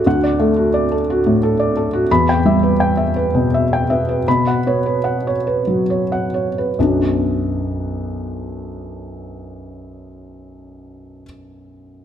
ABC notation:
X:1
M:3/4
L:1/16
Q:1/4=72
K:Bm
V:1 name="Felt piano"
[Ff] d A F d A F A,, A d A F | z g e B g e B B,, e g e B | z f c B f c B F, c f c B | z12 |
z12 |]
V:2 name="Felt piano"
D,,2 A,4 z6 | [E,,b]2 G,4 z4 B,2 | [B,,b]2 B,4 z6 | [B,,,F,,F,B,DF]12- |
[B,,,F,,F,B,DF]12 |]